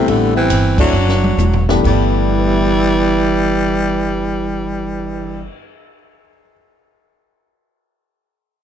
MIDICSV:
0, 0, Header, 1, 7, 480
1, 0, Start_track
1, 0, Key_signature, 1, "major"
1, 0, Tempo, 427655
1, 91, Time_signature, 4, 2, 24, 8
1, 1053, Tempo, 452830
1, 2013, Tempo, 467654
1, 8979, End_track
2, 0, Start_track
2, 0, Title_t, "Grand piano"
2, 0, Program_c, 0, 0
2, 0, Note_on_c, 0, 55, 78
2, 0, Note_on_c, 0, 57, 70
2, 0, Note_on_c, 0, 59, 67
2, 0, Note_on_c, 0, 60, 70
2, 0, Note_on_c, 0, 64, 90
2, 529, Note_off_c, 0, 55, 0
2, 533, Note_off_c, 0, 57, 0
2, 533, Note_off_c, 0, 59, 0
2, 536, Note_off_c, 0, 60, 0
2, 541, Note_off_c, 0, 64, 0
2, 880, Note_on_c, 0, 54, 59
2, 884, Note_on_c, 0, 57, 58
2, 887, Note_on_c, 0, 60, 62
2, 891, Note_on_c, 0, 62, 62
2, 900, Note_on_c, 0, 64, 68
2, 1035, Note_off_c, 0, 54, 0
2, 1037, Note_off_c, 0, 57, 0
2, 1038, Note_off_c, 0, 60, 0
2, 1040, Note_off_c, 0, 62, 0
2, 1045, Note_off_c, 0, 64, 0
2, 1848, Note_on_c, 0, 43, 80
2, 1850, Note_on_c, 0, 52, 76
2, 1853, Note_on_c, 0, 59, 77
2, 1854, Note_on_c, 0, 57, 73
2, 1860, Note_on_c, 0, 62, 74
2, 1861, Note_on_c, 0, 67, 85
2, 1940, Note_off_c, 0, 43, 0
2, 1956, Note_on_c, 0, 43, 58
2, 1987, Note_on_c, 0, 50, 60
2, 2009, Note_on_c, 0, 55, 62
2, 2020, Note_off_c, 0, 57, 0
2, 2035, Note_on_c, 0, 57, 56
2, 2042, Note_off_c, 0, 59, 0
2, 2057, Note_on_c, 0, 59, 60
2, 2083, Note_on_c, 0, 64, 67
2, 2464, Note_off_c, 0, 52, 0
2, 2469, Note_off_c, 0, 62, 0
2, 2469, Note_off_c, 0, 67, 0
2, 2502, Note_on_c, 0, 67, 47
2, 2576, Note_on_c, 0, 71, 44
2, 2654, Note_on_c, 0, 76, 42
2, 2754, Note_on_c, 0, 79, 40
2, 2854, Note_on_c, 0, 83, 42
2, 2965, Note_on_c, 0, 88, 37
2, 3083, Note_on_c, 0, 91, 35
2, 5715, Note_off_c, 0, 43, 0
2, 5745, Note_off_c, 0, 50, 0
2, 5767, Note_off_c, 0, 55, 0
2, 5792, Note_off_c, 0, 57, 0
2, 5814, Note_off_c, 0, 59, 0
2, 5840, Note_off_c, 0, 64, 0
2, 6218, Note_off_c, 0, 67, 0
2, 6292, Note_off_c, 0, 71, 0
2, 6370, Note_off_c, 0, 76, 0
2, 6470, Note_off_c, 0, 79, 0
2, 6570, Note_off_c, 0, 83, 0
2, 6681, Note_off_c, 0, 88, 0
2, 6799, Note_off_c, 0, 91, 0
2, 8979, End_track
3, 0, Start_track
3, 0, Title_t, "Tenor saxophone"
3, 0, Program_c, 1, 66
3, 90, Note_on_c, 1, 57, 77
3, 398, Note_off_c, 1, 57, 0
3, 409, Note_on_c, 1, 60, 76
3, 853, Note_off_c, 1, 60, 0
3, 890, Note_on_c, 1, 62, 72
3, 1803, Note_off_c, 1, 62, 0
3, 2024, Note_on_c, 1, 52, 85
3, 5741, Note_off_c, 1, 52, 0
3, 8979, End_track
4, 0, Start_track
4, 0, Title_t, "Baritone saxophone"
4, 0, Program_c, 2, 67
4, 0, Note_on_c, 2, 48, 83
4, 104, Note_on_c, 2, 50, 92
4, 121, Note_off_c, 2, 48, 0
4, 400, Note_off_c, 2, 50, 0
4, 407, Note_on_c, 2, 52, 84
4, 852, Note_off_c, 2, 52, 0
4, 900, Note_on_c, 2, 54, 89
4, 1807, Note_off_c, 2, 54, 0
4, 2033, Note_on_c, 2, 55, 96
4, 5749, Note_off_c, 2, 55, 0
4, 8979, End_track
5, 0, Start_track
5, 0, Title_t, "Upright bass"
5, 0, Program_c, 3, 32
5, 81, Note_on_c, 3, 33, 81
5, 547, Note_off_c, 3, 33, 0
5, 558, Note_on_c, 3, 31, 94
5, 1034, Note_off_c, 3, 31, 0
5, 1044, Note_on_c, 3, 30, 86
5, 1507, Note_off_c, 3, 30, 0
5, 1513, Note_on_c, 3, 28, 91
5, 1992, Note_off_c, 3, 28, 0
5, 2011, Note_on_c, 3, 31, 84
5, 5728, Note_off_c, 3, 31, 0
5, 8979, End_track
6, 0, Start_track
6, 0, Title_t, "Cymbal swell"
6, 2330, Note_on_c, 9, 59, 47
6, 5755, Note_off_c, 9, 59, 0
6, 8979, End_track
7, 0, Start_track
7, 0, Title_t, "Drums"
7, 85, Note_on_c, 9, 36, 21
7, 89, Note_on_c, 9, 51, 55
7, 197, Note_off_c, 9, 36, 0
7, 201, Note_off_c, 9, 51, 0
7, 561, Note_on_c, 9, 44, 59
7, 561, Note_on_c, 9, 51, 80
7, 562, Note_on_c, 9, 36, 21
7, 673, Note_off_c, 9, 44, 0
7, 673, Note_off_c, 9, 51, 0
7, 674, Note_off_c, 9, 36, 0
7, 878, Note_on_c, 9, 36, 87
7, 881, Note_on_c, 9, 49, 83
7, 990, Note_off_c, 9, 36, 0
7, 993, Note_off_c, 9, 49, 0
7, 1212, Note_on_c, 9, 38, 53
7, 1318, Note_off_c, 9, 38, 0
7, 1372, Note_on_c, 9, 47, 74
7, 1478, Note_off_c, 9, 47, 0
7, 1526, Note_on_c, 9, 44, 59
7, 1527, Note_on_c, 9, 48, 69
7, 1632, Note_off_c, 9, 44, 0
7, 1633, Note_off_c, 9, 48, 0
7, 1686, Note_on_c, 9, 43, 78
7, 1792, Note_off_c, 9, 43, 0
7, 1850, Note_on_c, 9, 38, 83
7, 1956, Note_off_c, 9, 38, 0
7, 2013, Note_on_c, 9, 36, 55
7, 2019, Note_on_c, 9, 49, 60
7, 2116, Note_off_c, 9, 36, 0
7, 2121, Note_off_c, 9, 49, 0
7, 8979, End_track
0, 0, End_of_file